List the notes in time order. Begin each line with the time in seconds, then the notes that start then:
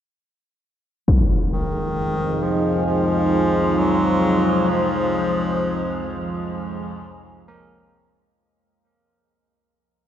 1.08 F2 G#3 D#4 F5, impact
1.45 G#4
1.53 D#3
1.80 F4
2.33 C3
2.43 F3
2.71 C5
2.86 F3
3.78 F#3
4.69 F3
7.48 A#4